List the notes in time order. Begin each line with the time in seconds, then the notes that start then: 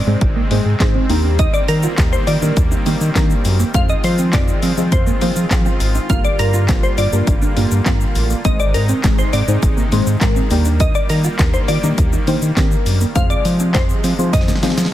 Already playing: C3 D#3 G#3 C4 D5
0.06 G#2 G#3 C4 D#4 G#4 C5
0.21 G#1, muted clean electric guitar stroke, kick, closed hi-hat
0.36 A#3
0.51 G#2 G#3 A#3 C4 D#4 G#4 C5, open hi-hat
0.65 G#2
0.80 G#2 G#3 C4 D#4 G#4 C5, kick, snare, clap, closed hi-hat
0.95 C4
1.09 D#2 D#3 G3 A#3 D4 D#4 G4 A#4, muted clean electric guitar stroke, open hi-hat
1.24 D4
1.39 D#4 D#5, kick, closed hi-hat, shaker
1.54 D5, shaker
1.68 D#3 A#4, muted clean electric guitar stroke, open hi-hat, shaker
1.83 F4, shaker
1.98 D#2 A#3 D4 D#4 G4 A#4, kick, snare, clap, closed hi-hat, shaker
2.13 C5, shaker
2.27 D#3 F4 D5, open hi-hat, shaker
2.42 D#3 A#3 D4 D#4 G4 A#4, shaker
2.57 D#2, muted clean electric guitar stroke, kick, closed hi-hat, shaker
2.71 D#4, shaker
2.86 D#3 A#3 D4 D#4 G4 A#4, open hi-hat, shaker
3.01 D#3, shaker
3.15 D#3 A#3 C4 D4 D#4 G4 A#4, kick, snare, clap, closed hi-hat, shaker
3.30 shaker
3.45 F#2, muted clean electric guitar stroke, open hi-hat, shaker
3.60 A#3, shaker
3.74 F2 G#3 C4 D#4 F4 G#4 C5 F5, kick, closed hi-hat, shaker
3.89 D#5, shaker
4.04 F3 C5, muted clean electric guitar stroke, open hi-hat, shaker
4.18 C4, shaker
4.33 F2 C4 D#4 F4 G#4 C5 D5, kick, snare, clap, closed hi-hat, shaker
4.48 shaker
4.63 F3 C4, open hi-hat, shaker
4.77 F3 C4 D#4 F4 G#4 C5, shaker
4.92 F2 C5, muted clean electric guitar stroke, kick, closed hi-hat, shaker
5.07 A#3, shaker
5.21 F3 A#3 C4 D#4 F4 G#4 C5, open hi-hat, shaker
5.36 F3, shaker
5.51 F3 C4 D#4 F4 G#4 C5, kick, snare, clap, closed hi-hat, shaker
5.66 C4, shaker
5.80 G#1, muted clean electric guitar stroke, open hi-hat, shaker
5.95 D#4, shaker
6.09 G1 A#3 D4 F4 G4 A#4 F5, kick, closed hi-hat, shaker
6.25 D5, shaker
6.39 G2 A#4, muted clean electric guitar stroke, open hi-hat, shaker
6.54 F4, shaker
6.68 G1 A#3 D4 F4 G4 C5, kick, snare, clap, closed hi-hat, shaker
6.83 C5, shaker
6.98 G2 F4 D5, open hi-hat, shaker
7.12 G2 A#3 D4 F4 G4 A#4, shaker
7.27 G1, muted clean electric guitar stroke, kick, closed hi-hat, shaker
7.42 D4, shaker
7.57 G2 A#3 D4 F4 G4 A#4, open hi-hat, shaker
7.71 G2, shaker
7.86 G2 A#3 C4 D4 F4 G4 A#4, kick, snare, clap, closed hi-hat, shaker
8.01 shaker
8.15 A1, muted clean electric guitar stroke, open hi-hat, shaker
8.30 A#3, shaker
8.45 G#1 C3 D#3 G#3 C4 D#4 G#4 C5 D#5, kick, closed hi-hat, shaker
8.60 D5, shaker
8.74 G#2 A#4, muted clean electric guitar stroke, open hi-hat, shaker
8.89 C4, shaker
9.04 G#1 G#3 C4 D#4 G#4 C5, kick, snare, clap, closed hi-hat, shaker
9.19 C5, shaker
9.33 G#2 C4 D5, open hi-hat, shaker
9.48 G#2 G#3 C4 D#4 G#4 C5, shaker
9.63 G#1, muted clean electric guitar stroke, kick, closed hi-hat, shaker
9.77 A#3, shaker
9.92 G#2 G#3 A#3 C4 D#4 G#4 C5, open hi-hat, shaker
10.07 G#2, shaker
10.21 G#2 G#3 C4 D#4 G#4 A#4, kick, snare, clap, closed hi-hat, shaker
10.36 C4, shaker
10.51 D#2 D#3 G3 A#3 D4 D#4 G4 A#4, muted clean electric guitar stroke, open hi-hat, shaker
10.65 D4, shaker
10.80 D#4 D#5, kick, closed hi-hat, shaker
10.95 D5, shaker
11.10 D#3 A#4, muted clean electric guitar stroke, open hi-hat, shaker
11.24 F4, shaker
11.39 D#2 A#3 D4 D#4 G4 A#4, kick, snare, clap, closed hi-hat, shaker
11.54 C5, shaker
11.68 D#3 F4 D5, open hi-hat, shaker
11.83 D#3 A#3 D4 D#4 G4 A#4, shaker
11.98 D#2, kick, closed hi-hat, shaker
12.13 D#4, shaker
12.27 D#3 A#3 D4 D#4 G4 C5, open hi-hat, shaker
12.42 D#3, shaker
12.57 D#3 A#3 C4 D4 D#4 G4 A#4, kick, snare, clap, closed hi-hat, shaker
12.72 shaker
12.86 F#2, muted clean electric guitar stroke, open hi-hat, shaker
13.01 A#3, shaker
13.15 F2 G#3 C4 D#4 F4 G#4 C5 F5, kick, closed hi-hat, shaker
13.30 D5, shaker
13.45 F3, muted clean electric guitar stroke, open hi-hat, shaker
13.60 C4, shaker
13.74 F2 C4 D#4 F4 G#4 C5 D#5, kick, snare, clap, closed hi-hat, shaker
13.89 shaker
14.04 F3 C4, open hi-hat, shaker
14.18 F3 C4 D#4 F4 G#4 C5, shaker
14.33 F2 D#5, kick, snare, closed hi-hat, shaker
14.41 snare
14.48 A#3, snare, shaker
14.55 snare
14.62 F3 A#3 C4 D#4 F4 G#4 C5, snare, open hi-hat, shaker
14.70 snare
14.77 F3, snare, shaker
14.85 snare